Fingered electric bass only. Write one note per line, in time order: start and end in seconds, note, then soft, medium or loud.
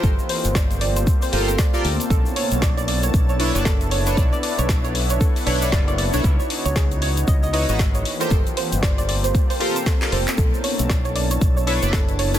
0.03 0.16 G1 loud
0.45 1.04 G1 medium
1.33 1.55 G1 medium
1.85 1.97 D2 medium
2.10 2.23 B1 loud
2.52 3.11 B1 medium
3.14 3.50 B1 medium
3.55 4.14 F#1 loud
4.17 4.30 B1 loud
4.59 5.17 B1 medium
5.47 5.74 B1 medium
5.72 6.09 F#1 loud
6.14 6.22 B1 medium
6.24 6.37 C#2 loud
6.65 7.24 C#2 medium
7.28 7.64 C#2 medium
7.69 8.02 G#1 loud
8.31 8.43 G1 loud
8.72 9.31 G1 medium
10.12 10.25 F1 loud
10.38 10.50 B1 loud
10.79 11.38 B1 medium
11.41 11.78 B1 medium
11.83 12.39 F#1 loud